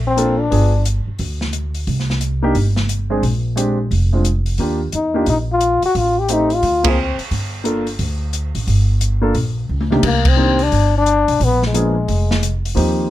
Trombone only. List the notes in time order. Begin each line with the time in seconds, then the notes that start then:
0.07 C4
0.40 D4
4.95 D#4
5.29 D#4
5.52 F4
5.85 F#4
5.98 F4
6.19 G4
6.33 D#4
6.55 F4
6.90 C4
10.06 A#3
10.29 C4
10.63 D4
10.97 D4
11.44 B3
11.67 G#3